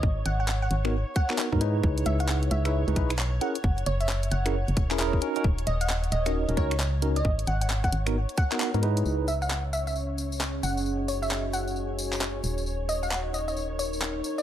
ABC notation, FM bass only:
X:1
M:4/4
L:1/16
Q:"Swing 16ths" 1/4=133
K:C#dor
V:1 name="FM bass" clef=bass
G,,,2 G,,,4 G,,,3 z4 G,,3 | C,,2 C,,4 C,,3 C,, B,,,4 z2 | F,,,2 F,,,4 F,,,3 F,,, E,,,4 z2 | D,,,2 D,,,4 D,,,3 D,,, C,,6 |
G,,,2 G,,,4 G,,,3 z4 G,,3 | C,,12- C,,2 F,,,2- | F,,,12- F,,,2 D,,,2- | D,,,12- D,,,2 z2 |]